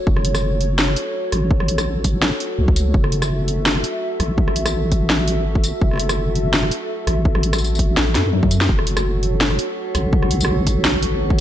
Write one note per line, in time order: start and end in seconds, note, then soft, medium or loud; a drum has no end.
0.00 11.40 F#4 medium
0.00 11.40 A4 medium
0.00 2.92 C#5 medium
0.07 0.95 F#1 loud
0.07 kick loud
0.16 cross-stick medium
0.25 closed hi-hat medium
0.35 cross-stick medium
0.35 tambourine medium
0.61 closed hi-hat medium
0.79 snare loud
0.88 cross-stick soft
0.96 closed hi-hat medium
1.32 2.31 A1 loud
1.32 cross-stick medium
1.32 closed hi-hat medium
1.51 kick loud
1.60 cross-stick medium
1.68 closed hi-hat medium
1.78 cross-stick medium
1.78 tambourine medium
2.04 kick medium
2.04 closed hi-hat medium
2.04 tambourine soft
2.22 snare loud
2.40 closed hi-hat medium
2.58 2.67 C#2 medium
2.68 2.93 C#2 medium
2.68 kick loud
2.76 closed hi-hat medium
2.76 tambourine medium
2.94 3.83 F#1 loud
2.94 8.67 E5 medium
2.94 kick loud
3.04 cross-stick medium
3.12 closed hi-hat medium
3.22 cross-stick medium
3.22 tambourine medium
3.48 closed hi-hat medium
3.66 snare loud
3.76 cross-stick soft
3.84 closed hi-hat medium
4.20 5.39 A1 loud
4.20 cross-stick soft
4.20 closed hi-hat medium
4.38 kick loud
4.48 cross-stick medium
4.56 closed hi-hat medium
4.66 cross-stick medium
4.66 tambourine medium
4.92 kick medium
4.92 closed hi-hat medium
4.92 tambourine soft
5.10 snare loud
5.28 closed hi-hat medium
5.37 5.72 G#1 medium
5.55 kick loud
5.64 closed hi-hat medium
5.64 tambourine medium
5.81 6.70 F#1 loud
5.81 kick loud
5.91 cross-stick soft
5.93 cross-stick soft
5.96 cross-stick soft
5.97 cross-stick soft
5.97 closed hi-hat medium
6.09 cross-stick medium
6.09 tambourine medium
6.35 closed hi-hat medium
6.53 snare loud
6.63 cross-stick soft
6.71 closed hi-hat medium
7.07 7.96 A1 loud
7.07 cross-stick medium
7.07 closed hi-hat medium
7.25 kick loud
7.35 cross-stick medium
7.43 closed hi-hat medium
7.53 cross-stick medium
7.53 tambourine medium
7.58 tambourine medium
7.64 tambourine soft
7.75 tambourine soft
7.79 kick medium
7.79 closed hi-hat medium
7.97 8.17 A1 loud
7.97 snare loud
8.15 8.68 F#2 medium
8.15 snare medium
8.15 closed hi-hat medium
8.33 high tom medium
8.43 kick loud
8.43 high tom medium
8.51 closed hi-hat medium
8.51 tambourine medium
8.61 snare medium
8.61 closed hi-hat soft
8.69 9.58 F#1 loud
8.69 11.40 F#4 medium
8.69 11.40 C#5 medium
8.69 kick loud
8.79 cross-stick medium
8.87 closed hi-hat medium
8.97 cross-stick medium
8.97 tambourine medium
9.23 closed hi-hat medium
9.41 snare loud
9.51 cross-stick soft
9.59 closed hi-hat medium
9.95 11.14 A1 loud
9.95 cross-stick medium
9.95 closed hi-hat medium
10.13 kick loud
10.23 cross-stick medium
10.31 closed hi-hat medium
10.41 tambourine medium
10.45 cross-stick medium
10.67 kick medium
10.67 closed hi-hat medium
10.67 tambourine soft
10.85 snare loud
11.03 closed hi-hat medium
11.12 11.40 G#1 medium
11.30 kick loud